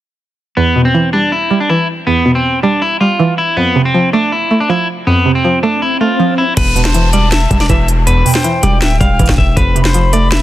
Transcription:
0.57 synth pluck E2, clean electric guitar B3
0.76 synth pluck B2
0.85 clean electric guitar C4
0.94 synth pluck E3
1.13 synth pluck G3, clean electric guitar D4
1.32 clean electric guitar E4
1.51 synth pluck G3
1.60 clean electric guitar D4
1.69 synth pluck E3, clean electric guitar E4
2.07 synth pluck E2, clean electric guitar B3
2.26 synth pluck B2
2.35 clean electric guitar C4
2.63 synth pluck G3, clean electric guitar D4
2.82 clean electric guitar E4
3.01 synth pluck G3, clean electric guitar F4
3.19 synth pluck E3
3.38 clean electric guitar E4
3.57 synth pluck F2, clean electric guitar B3
3.76 synth pluck C3
3.85 clean electric guitar C4
3.94 synth pluck F3
4.13 synth pluck A3, clean electric guitar D4
4.32 clean electric guitar E4
4.51 synth pluck A3
4.60 clean electric guitar D4
4.69 synth pluck F3, clean electric guitar E4
5.07 synth pluck F2, clean electric guitar B3, swell
5.26 synth pluck C3
5.35 clean electric guitar C4
5.45 synth pluck F3
5.63 synth pluck A3, clean electric guitar D4
5.82 clean electric guitar E4
6.01 synth pluck A3, clean electric guitar F4
6.20 synth pluck F3
6.38 clean electric guitar E4
6.57 808-style bass E1, synth pluck E2, clean electric guitar B4, kick, closed hi-hat, crash, downlifter
6.76 synth pluck B2, flute A5, closed hi-hat
6.85 clean electric guitar C5, snare, clap
6.94 synth pluck E3, closed hi-hat
7.13 synth pluck G3, clean electric guitar D5, closed hi-hat
7.32 clean electric guitar E5, snare, clap
7.51 808-style bass E1, synth pluck G3, kick, closed hi-hat
7.60 clean electric guitar D5, snare
7.69 808-style bass E1, synth pluck E3, clean electric guitar E5, kick, closed hi-hat
7.88 closed hi-hat
8.07 synth pluck E2, clean electric guitar B4, closed hi-hat
8.25 synth pluck B2, flute G5, open hi-hat
8.35 clean electric guitar C5, snare, clap
8.44 synth pluck E3, closed hi-hat
8.63 808-style bass E1, synth pluck G3, clean electric guitar D5, closed hi-hat
8.81 808-style bass D1, clean electric guitar E5, snare, clap, closed hi-hat
9.00 808-style bass E1, synth pluck G3, clean electric guitar F5, kick, closed hi-hat
9.19 808-style bass E1, synth pluck E3, kick, closed hi-hat
9.26 808-style bass E1, kick, cross-stick, snare, clap, closed hi-hat
9.32 closed hi-hat
9.38 808-style bass E1, clean electric guitar E5, kick
9.56 808-style bass F1, synth pluck F2, clean electric guitar B4, kick, closed hi-hat
9.75 synth pluck C3, flute B5, closed hi-hat
9.85 clean electric guitar C5, snare, clap
9.94 synth pluck F3, closed hi-hat
10.13 synth pluck A3, clean electric guitar D5, closed hi-hat
10.31 clean electric guitar E5, snare, clap

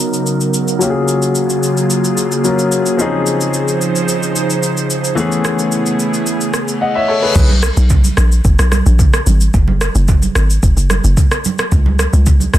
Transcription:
Already playing: analog synth pad C#3 F#3 B3 D#4 A#4, grand piano F#3 B3 C#4 D#4 A#4
0.13 shaker
0.26 shaker
0.41 shaker
0.54 shaker
0.68 shaker
0.79 grand piano F#3 A#3 C#4 F4, analog synth pad A#3 F4 G#4, shaker
0.83 grand piano G4
0.90 grand piano G#4
1.08 shaker
1.22 shaker
1.35 shaker
1.50 shaker
1.63 shaker
1.77 shaker
1.90 shaker
2.04 shaker
2.17 shaker
2.32 shaker
2.44 grand piano F#3 A#3 C#4 F4 A#4, shaker
2.59 shaker
2.72 shaker
2.86 shaker
2.97 grand piano F3 C4 C#4 D#4, analog synth pad F3 D#4 C5, shaker
3.02 grand piano G#4
3.27 shaker
3.41 shaker
3.54 shaker
3.68 shaker
3.81 shaker
3.96 shaker
4.09 shaker
4.23 shaker
4.36 shaker
4.50 shaker
4.63 shaker
4.77 shaker
4.90 shaker
5.04 shaker
5.15 grand piano E3 A3 B3 C#4, analog synth pad A3 B3 E4 G#4, shaker
5.20 grand piano G#4
5.32 shaker
5.45 cross-stick, shaker
5.59 shaker
5.72 shaker
5.86 shaker
6.00 shaker
6.14 shaker
6.26 reverse cymbal, shaker
6.41 shaker
6.54 cross-stick, shaker
6.68 shaker
6.81 grand piano D#5 F#5
6.95 grand piano C#5 E5
7.08 grand piano A4 C#5
7.22 grand piano G#4 B4
7.36 log drum bass B1, kick, crash, low conga, shaker
7.49 high conga
7.63 cross-stick, shaker
7.77 log drum bass B1, high conga, shaker
7.90 kick, low conga, shaker
8.04 high conga, shaker
8.17 log drum bass A#1, cross-stick, shaker
8.32 shaker
8.45 log drum bass F#1, kick, shaker
8.59 log drum bass B1, cross-stick, shaker
8.72 cross-stick, high conga, shaker
8.86 log drum bass A#1, shaker
8.99 kick, low conga, shaker
9.14 cross-stick, shaker
9.27 log drum bass G#1, high conga, shaker
9.41 shaker
9.54 log drum bass F#1, kick, low conga, shaker
9.68 high conga
9.81 cross-stick, shaker
9.95 log drum bass F#1, high conga, shaker
10.08 kick, low conga, shaker
10.22 high conga, shaker
10.35 log drum bass G#1, cross-stick, shaker
10.50 shaker
10.63 log drum bass F1, kick, shaker
10.77 log drum bass F#1, shaker
10.90 cross-stick, high conga, shaker
11.04 log drum bass F#1, shaker
11.17 kick, low conga, shaker
11.32 cross-stick, shaker
11.45 high conga, shaker
11.59 cross-stick, shaker
11.72 log drum bass C#2, kick, low conga, shaker
11.86 high conga
11.99 cross-stick, shaker
12.13 log drum bass C#2, high conga, shaker
12.26 kick, low conga, shaker
12.40 high conga, shaker
12.54 log drum bass C2, cross-stick, shaker

